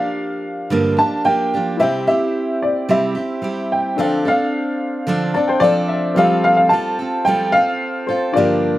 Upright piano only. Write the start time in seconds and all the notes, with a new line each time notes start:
Already playing: F5
0.99 A5
1.25 G5
1.80 E5
2.08 E5
2.62 D5
2.91 E5
3.72 G5
4.28 F5
5.35 D5
5.49 C5
5.60 D5
6.17 F5
6.44 F5
6.57 F5
6.69 A5
7.25 G5
7.52 F5
8.07 C5
8.34 D5